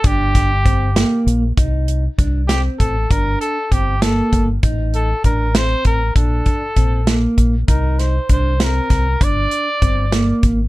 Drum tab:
HH |xxxxx|xxxxx|xxxxx|xxxxx|
SD |-o-o-|---o-|---o-|---o-|
BD |ooo--|o-o-o|o-o-o|o-o-o|

HH |xxxxx|xxxxx|xxxxx|
SD |---o-|-o-oo|---o-|
BD |ooo-o|o-o-o|o-o-o|